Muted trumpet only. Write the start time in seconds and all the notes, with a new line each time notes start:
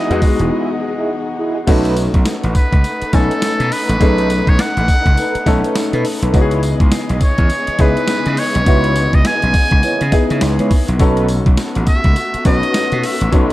Already playing: D#5
2.57 B4
3.15 A4
3.73 B4
4.49 C#5
4.61 F#5
7.23 C#5
7.81 B4
8.39 C#5
9.15 D#5
9.27 G#5
11.89 E5
12.47 D#5
13.06 E5